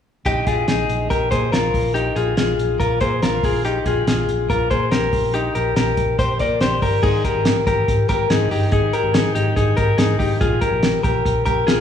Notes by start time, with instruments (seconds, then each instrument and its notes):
0.25 fingered electric bass A#1, clean electric guitar D#4 G4, kick, closed hi-hat
0.47 fingered electric bass A#1, clean electric guitar F4 G#4, kick, closed hi-hat
0.68 fingered electric bass A#1, clean electric guitar D#4 G#4, snare, closed hi-hat
0.88 fingered electric bass A#1, closed hi-hat
1.10 fingered electric bass A#1, clean electric guitar G4 A#4, kick, closed hi-hat
1.31 fingered electric bass A#2, clean electric guitar G#4 C5, kick, snare, closed hi-hat
1.52 fingered electric bass A#1, clean electric guitar F4 A#4, snare, closed hi-hat
1.74 fingered electric bass A#1, kick, open hi-hat
1.94 clean electric guitar D#4 G4, closed hi-hat
2.16 fingered electric bass A#1, clean electric guitar F4 G#4, closed hi-hat
2.37 fingered electric bass A#1, clean electric guitar F4 G#4, snare, closed hi-hat
2.58 fingered electric bass A#1, closed hi-hat
2.79 fingered electric bass A#1, clean electric guitar F4 A#4, kick, closed hi-hat
3.01 fingered electric bass A#2, clean electric guitar G#4 C5, kick, closed hi-hat
3.22 fingered electric bass A#1, clean electric guitar F4 A#4, snare, closed hi-hat
3.43 fingered electric bass A#1, clean electric guitar F4 G#4, kick, open hi-hat
3.65 clean electric guitar D#4 G4, closed hi-hat
3.85 fingered electric bass A#1, clean electric guitar F4 G#4, kick, closed hi-hat
4.07 fingered electric bass A#1, clean electric guitar F4 G#4, snare, closed hi-hat
4.29 fingered electric bass A#1, closed hi-hat
4.49 fingered electric bass A#1, clean electric guitar F4 A#4, kick, closed hi-hat
4.71 fingered electric bass A#2, clean electric guitar G#4 C5, kick, closed hi-hat
4.91 fingered electric bass A#1, clean electric guitar G4 A#4, snare, closed hi-hat
5.13 fingered electric bass A#1, kick, open hi-hat
5.34 clean electric guitar D#4 G4, closed hi-hat
5.55 fingered electric bass A#1, clean electric guitar G4 A#4, closed hi-hat
5.76 fingered electric bass A#1, clean electric guitar G4 A#4, snare, closed hi-hat
5.97 fingered electric bass A#1, kick, closed hi-hat
6.19 fingered electric bass A#1, clean electric guitar G4 C5, kick, closed hi-hat
6.39 fingered electric bass A#2, clean electric guitar A#4 D5, kick, closed hi-hat
6.60 fingered electric bass A#1, clean electric guitar G4 C5, snare, closed hi-hat
6.82 fingered electric bass G1, clean electric guitar G4 A#4, kick, open hi-hat
7.03 fingered electric bass G#1, clean electric guitar D#4 G#4, kick, crash
7.24 clean electric guitar G4 A#4, kick, closed hi-hat
7.35 fingered electric bass G#1
7.45 snare, closed hi-hat
7.67 fingered electric bass G#1, clean electric guitar G4 A#4, kick, closed hi-hat
7.88 fingered electric bass G#1, kick, closed hi-hat
8.09 fingered electric bass G#1, clean electric guitar G4 A#4, kick, snare, closed hi-hat
8.30 fingered electric bass G#1, clean electric guitar D#4 G#4, snare, closed hi-hat
8.51 fingered electric bass G1, clean electric guitar D#4 G4, open hi-hat
8.72 fingered electric bass G#1, clean electric guitar D#4 G#4, kick, closed hi-hat
8.93 clean electric guitar G4 A#4, closed hi-hat
9.04 fingered electric bass G#1
9.14 clean electric guitar D#4 G#4, snare, closed hi-hat
9.35 fingered electric bass G#1, clean electric guitar D#4 G4, closed hi-hat
9.56 fingered electric bass G#1, clean electric guitar D#4 G#4, kick, closed hi-hat
9.77 fingered electric bass G#1, clean electric guitar G4 A#4, kick, closed hi-hat
9.98 fingered electric bass G#1, clean electric guitar D#4 G#4, snare, closed hi-hat
10.19 fingered electric bass G#1, clean electric guitar D#4 G4, kick, open hi-hat
10.41 fingered electric bass A#1, clean electric guitar F4 G#4, kick, closed hi-hat
10.61 clean electric guitar G4 A#4, kick, closed hi-hat
10.72 fingered electric bass A#1
10.83 snare, closed hi-hat
11.03 fingered electric bass A#1, clean electric guitar G4 A#4, kick, closed hi-hat
11.25 fingered electric bass A#1, kick, closed hi-hat
11.46 fingered electric bass A#1, clean electric guitar G4 A#4, kick, closed hi-hat
11.67 fingered electric bass A#1, clean electric guitar F4 G#4, snare, closed hi-hat